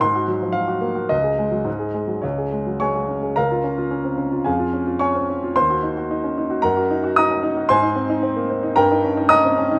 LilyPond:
\new Staff \with { instrumentName = "Grand piano" } { \time 2/4 \key des \major \tempo 4 = 111 << { c'''4 f''8 r8 | ees''2 | des''4 <des'' aes'' des'''>4 | <bes' f'' bes''>2 |
<aes' f'' aes''>4 <des'' aes'' des'''>4 | <c'' c'''>2 | <bes' ges'' bes''>4 <ees'' bes'' ees'''>4 | \key aes \major <c'' aes'' c'''>2 |
<bes' g'' bes''>4 <ees'' bes'' ees'''>4 | } \\ { aes,16 ges'16 ges16 f16 ges16 ges'16 bes16 ges'16 | des,16 aes'16 aes16 ges16 aes,16 aes'16 aes16 ges16 | des,16 aes'16 aes16 ges16 aes16 aes'16 des'16 aes'16 | des,16 f'16 des'16 f'16 des'16 c'16 des'16 f'16 |
f,16 f'16 des'16 f'16 des'16 c'16 des'16 f'16 | ees,16 ges'16 ees'16 ges'16 ees'16 des'16 ees'16 ges'16 | ges,16 ges'16 ees'16 ges'16 ees'16 des'16 ees'16 ges'16 | aes,16 ees'16 c'16 ees'16 c'16 bes16 c'16 ees'16 |
g,16 ees'16 des'16 ees'16 des'16 c'16 des'16 ees'16 | } >> }